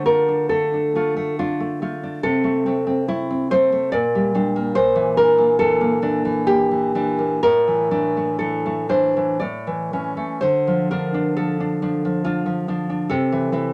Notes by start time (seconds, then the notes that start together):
Already playing: D3
0.05 A3 F4 A#4
0.28 D4
0.49 A3 A4
0.74 D4
0.95 A3 F4
1.17 A3
1.39 D4 F4
1.60 A3
1.82 A3 F4
2.03 D4
2.23 C3 A4
2.44 A3
2.66 A3 C4
2.87 C4
3.08 A3 E4
3.30 C4
3.51 A3 C4 C5
3.72 A3
3.92 A#2 D5
4.15 G3
4.35 G3 D4
4.56 A#3
4.75 A#2 C5
4.95 E3
5.17 E3 D4 A#4
5.38 A#3
5.59 E3 A4
5.81 A#3
6.02 E3 D4
6.25 E3
6.47 A#3 G4
6.71 E3
6.95 E3 D4
7.18 A#3
7.43 A2 A#4
7.67 E3
7.91 E3 D4
8.17 A3
8.39 E3 A4
8.66 A3
8.89 E3 D4 C5
9.17 E3
9.40 A2 D5
9.67 E3
9.93 E3 C#4
10.17 A3
10.41 D3 C5
10.67 F3
10.91 F3 D4 A#4
11.14 D4
11.36 F3 A4
11.60 D4
11.82 F3 D4
12.05 F3
12.24 D4 F4
12.46 F3
12.68 F3 D4
12.90 D4
13.09 C3 A4
13.32 E3
13.52 E3 E4